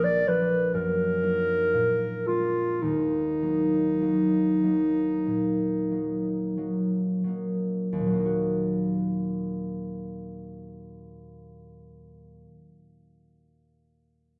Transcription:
Already playing: harp A#1 F3 A#3 D4
0.04 clarinet D5
0.28 harp F3 A#3 D4, clarinet B4
0.74 harp F#2, clarinet A#4
1.22 harp F#3 A#3 D#4
1.74 harp A#2
2.27 harp G#3 A#3 D4, clarinet F4
2.82 harp D#1 D#2, clarinet D#4
3.42 harp F#3 A#3 D#4
4.01 harp F#3 A#3 D#4
4.63 harp F#3 A#3 D#4
5.27 harp A#2
5.91 harp F#3 A#3 D#4
6.57 harp F#3 A#3 D#4
7.24 harp F#3 A#3
7.28 harp D#4
7.93 harp D#2
7.99 harp A#2
8.06 harp F#3
8.13 harp A#3
8.19 harp D#4
8.25 harp F#4

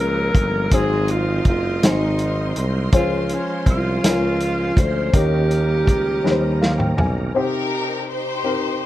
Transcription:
Already playing: tuba C#2, grand piano A#2 G#3 C#4 F4 G#4 A#4 C5, tonewheel organ F3 G#3 A#3 C#4 A#4, string section C#4 F5 A#5
0.00 alto saxophone A#4
0.34 tuba G1, kick, closed hi-hat
0.71 tuba G#1, grand piano G#2 F#3 D#4 G#4 C5, tonewheel organ F#3 C4 D#4, alto saxophone G#4, string section D#5 C6, kick, closed hi-hat
1.08 alto saxophone F4, closed hi-hat
1.45 tuba F#1, alto saxophone F4, kick, closed hi-hat
1.83 tuba G#1, grand piano D#4 F#4 G#4 C5, alto saxophone D#4, snare, closed hi-hat
2.19 closed hi-hat
2.56 tuba C2, closed hi-hat
2.92 tuba C#2, tonewheel organ F3 C#4 C5, grand piano F3 C#4 F4 G#4 C5, string section C#4 F5, alto saxophone F4, kick, closed hi-hat
3.29 closed hi-hat
3.34 alto saxophone C#4
3.66 tuba C2, alto saxophone F4, kick, closed hi-hat
4.03 tuba C#2, grand piano C#4 F4 G#4 A#4, snare, closed hi-hat
4.40 closed hi-hat
4.77 tuba D2, alto saxophone C5, kick, closed hi-hat
5.12 tuba D#2, grand piano D#3 C#4 D#4 G4 A#4, tonewheel organ D#3 G3 A#3 A#4, alto saxophone G4, string section D#5 A#5, kick, closed hi-hat
5.51 closed hi-hat
5.87 tuba C#2, kick, closed hi-hat
6.23 tuba D#2, grand piano G3 C#4 D#4 B4, snare
6.31 grand piano C5
6.61 grand piano F5, snare
6.78 grand piano G5, mid tom
6.97 tuba B1, grand piano G#5, floor tom
7.34 grand piano C3 C4 D#4 G4 C5, string section D#4 G4 A#4
8.11 string section D#4 G4 C5
8.44 grand piano C4 D#4 G4 A#4

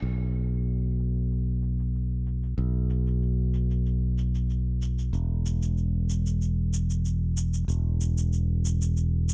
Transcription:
0.02 fingered electric bass B1, shaker
0.35 shaker
0.51 shaker
0.67 shaker
0.99 shaker
1.16 shaker
1.31 shaker
1.62 shaker
1.79 shaker
1.94 shaker
2.26 shaker
2.43 shaker
2.58 fingered electric bass B1, shaker
2.90 shaker
3.07 shaker
3.22 shaker
3.54 shaker
3.70 shaker
3.86 shaker
4.18 shaker
4.34 shaker
4.50 shaker
4.82 shaker
4.98 shaker
5.13 fingered electric bass E1, shaker
5.46 shaker
5.62 shaker
5.77 shaker
6.09 shaker
6.26 shaker
6.41 shaker
6.73 shaker
6.90 shaker
7.05 shaker
7.37 shaker
7.53 shaker
7.68 fingered electric bass E1, shaker
8.01 shaker
8.18 shaker
8.33 shaker
8.65 shaker
8.81 shaker
8.97 shaker
9.29 shaker

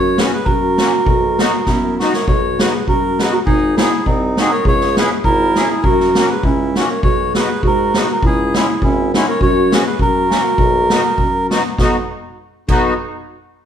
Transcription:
Already playing: tuba F#2, clarinet F#4, melodica C#5
0.18 accordion B3 C#4 F#4, clarinet G#4, melodica B4, snare
0.33 clarinet G#4, melodica B4
0.45 tuba F#2, clarinet F#4, melodica A#4, kick
0.78 accordion A#3 C#4 F#4, snare
1.06 tuba B1, kick
1.39 accordion B3 D#4 F#4, snare
1.66 tuba F#2, clarinet B3, melodica E4, kick, snare
1.99 accordion B3 D#4 F#4, clarinet D#4, melodica F#4, snare
2.14 clarinet A#4, melodica C#5, snare
2.27 tuba B1, clarinet F#4, melodica C#5, kick
2.59 accordion B3 D#4 F#4, clarinet G#4, melodica B4, snare
2.88 tuba F#2, clarinet F#4, melodica A#4, kick
3.19 accordion B3 D#4 F#4, clarinet G#4, melodica B4, snare
3.32 clarinet F#4, melodica A#4
3.46 tuba G#1, clarinet D#4, melodica G#4, kick
3.77 accordion C4 D#4 G#4, clarinet E4, melodica G#4, snare
4.06 tuba C2, clarinet C4, melodica D#4, kick
4.37 accordion C4 D#4 G#4, clarinet D#4, melodica F#4, snare
4.51 clarinet A#4, melodica C#5
4.65 tuba C#2, clarinet G#4, melodica C#5, kick
4.81 snare
4.97 accordion C#4 E4 G#4, clarinet G#4, melodica B4, snare
5.24 tuba G#1, clarinet E4, melodica A#4, kick
5.55 accordion C#4 E4 G#4, snare
5.70 clarinet E4, melodica G#4
5.83 tuba F#2, clarinet F#4, melodica A#4, kick
6.00 snare
6.15 accordion A#3 C#4 F#4, snare
6.29 clarinet G#4, melodica B4
6.43 tuba C#2, clarinet C#4, melodica E4, kick
6.75 accordion A#3 C#4 F#4, clarinet D#4, melodica F#4, snare
6.90 clarinet A#4, melodica C#5
7.03 tuba B1, clarinet F#4, melodica C#5, kick
7.34 accordion B3 D#4 F#4, clarinet G#4, melodica B4, snare
7.63 tuba G#2, clarinet F#4, melodica A#4, kick
7.94 accordion B3 D#4 F#4, clarinet G#4, melodica B4, snare
8.10 clarinet F#4, melodica A#4
8.23 tuba C#2, clarinet E4, melodica G#4, kick
8.54 accordion G#3 C#4 E4, clarinet E4, melodica G#4, snare
8.82 tuba G#1, clarinet C#4, melodica E4, kick
9.13 accordion G#3 C#4 E4, clarinet D#4, melodica F#4, snare
9.28 clarinet A#4, melodica C#5
9.41 tuba F#2, clarinet F#4, melodica C#5, kick
9.71 accordion B3 C#4 F#4, clarinet G#4, melodica B4, snare
9.86 clarinet G#4, melodica B4
9.98 tuba F#2, clarinet F#4, melodica A#4, kick
10.28 accordion A#3 C#4 F#4, snare
10.58 tuba B1, kick
10.90 accordion B3 D#4 F#4, snare
11.18 tuba F#2, kick
11.50 accordion B3 D#4 F#4, snare
11.78 tuba B1, clarinet B3, accordion B3 D#4 F#4, melodica D#5, kick, snare
12.68 tuba B1, clarinet B3, accordion B3 D#4 F#4, melodica D#5, kick, crash

